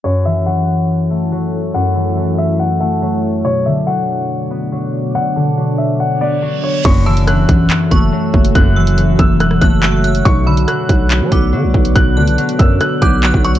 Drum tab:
CC |----------------|----------------|----------------|----------------|
HH |----------------|----------------|----------------|----------------|
CP |----------------|----------------|----------------|----------------|
SD |----------------|----------------|----------------|----------------|
BD |----------------|----------------|----------------|----------------|

CC |x---------------|----------------|----------------|----------------|
HH |x--xx-x-x-x----x|x--xx-x-x-x---xx|x--xx-x-x-x----x|x--xxxx-x-x---xx|
CP |--------x-------|------------x---|--------x-------|------------x---|
SD |----r-----------|--------rr------|----r-----------|--------r-------|
BD |o-----o---o---o-|o-----o---o-----|o-----o---o---o-|o-----o---o--o--|